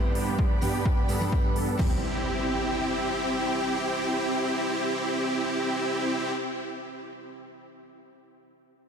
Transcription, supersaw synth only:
Already playing: B3 D4 G4
0.15 B3 D4 G4
0.39 B3 D4 G4
0.62 B3 D4 G4
0.85 B3 D4 B4
1.09 B3 D4 A4
1.44 B3 D4 B4
1.56 B3 D4 A4
1.79 C4 E4 G4

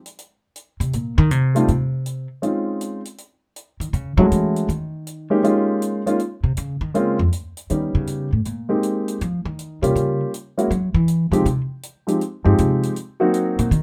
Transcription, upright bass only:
0.80 C3
0.94 A#2
1.18 D#3
1.31 C3
1.69 C3
3.80 D#3
3.93 C#3
4.18 F#3
4.32 E3
4.69 D#3
6.44 C3
6.58 C#3
6.81 D#3
6.95 C#3
7.19 F2
7.71 D#3
7.95 C#3
8.33 A2
8.46 A#2
9.22 F3
9.45 D#3
9.83 C3
9.96 C#3
10.71 F#3
10.94 E3
11.32 C#3
11.46 C3
12.46 G2
12.59 C3
13.59 A#2
13.71 D#3

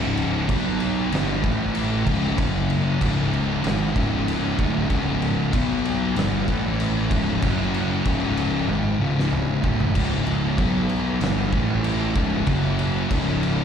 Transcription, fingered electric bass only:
Already playing: C#1
0.49 B1
1.11 G1
1.44 A1
2.06 C#1
2.38 F#1
3.01 C#1
3.64 G#1
3.96 C#1
4.59 D1
4.90 C#1
5.53 B1
6.16 G1
6.48 A1
7.11 C#1
7.43 F#1
8.06 C#1
8.69 G#1
9.00 C#1
9.64 D1
9.95 C#1
10.58 B1
11.19 G1
11.53 A1
12.15 C#1
12.47 F#1
13.10 C#1

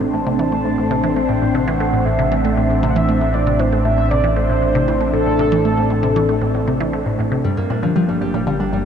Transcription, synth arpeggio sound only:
0.01 A2
0.14 A2
0.27 C3
0.39 E3
0.52 A3
0.65 A2
0.78 A2
0.91 C3
1.04 E3
1.16 A3
1.29 A2
1.42 A2
1.55 C3
1.68 E3
1.80 A3
1.93 A2
2.06 A2
2.19 C3
2.32 E3
2.45 A3
2.57 A2
2.70 A2
2.83 C3
2.96 E3
3.09 A3
3.21 A2
3.34 A2
3.47 C3
3.59 E3
3.72 A3
3.85 A2
3.98 A2
4.11 C3
4.24 E3
4.36 A3
4.49 A2
4.62 A2
4.75 C3
4.88 E3
5.01 A3
5.14 A2
5.26 A2
5.39 C3
5.52 E3
5.65 A3
5.78 A2
5.90 A2
6.03 C3
6.16 E3
6.29 A3
6.42 A2
6.55 A2
6.68 C3
6.81 E3
6.93 A3
7.06 A2
7.19 A2
7.32 C3
7.44 G2
7.57 G2
7.70 A#2
7.83 D3
7.96 G3
8.09 G2
8.21 G2
8.34 A#2
8.47 D3
8.60 G3
8.73 G2

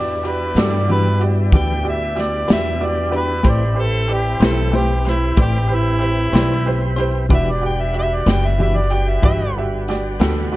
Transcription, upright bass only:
Already playing: E2
0.55 G2
1.52 D2
2.49 E2
3.44 A1
4.40 B1
5.37 A1
6.33 B1
7.30 E1
8.26 F#1
9.23 G1
10.20 D2

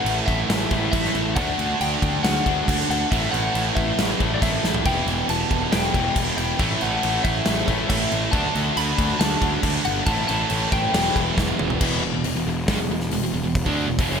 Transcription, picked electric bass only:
0.05 A1
0.28 A1
0.49 A1
0.71 A1
0.93 A1
1.14 A1
1.37 D2
1.58 D2
1.81 D2
2.02 D2
2.24 D2
2.46 D2
2.68 D2
2.89 D2
3.12 A1
3.33 A1
3.55 A1
3.76 A1
3.98 A1
4.20 A1
4.42 A1
4.63 A1
4.86 E1
5.06 E1
5.29 E1
5.51 E1
5.73 E1
5.94 E1
6.16 E1
6.37 E1
6.60 A1
6.82 A1
7.03 A1
7.24 A1
7.48 A1
7.68 A1
7.90 A1
8.12 A1
8.33 D2
8.55 D2
8.77 D2
8.99 D2
9.20 D2
9.42 D2
9.63 D2
9.86 G1
10.07 A1
10.29 A1
10.51 A1
10.73 A1
10.94 E1
11.16 E1
11.37 E1
11.60 E1
11.81 E1
12.04 E1
12.15 E1
12.25 E1
12.36 E1
12.46 E1
12.69 G1
12.78 E1
12.89 E1
13.11 E1
13.21 E1
13.34 E1
13.44 E1
13.66 D2
13.87 E1
13.99 E1
14.10 F#1

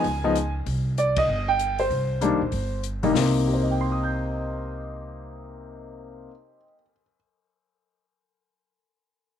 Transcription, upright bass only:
0.04 C#2
0.66 C2
1.28 G1
1.90 C2
2.31 D2
2.42 A#1
2.52 G1
3.14 C2

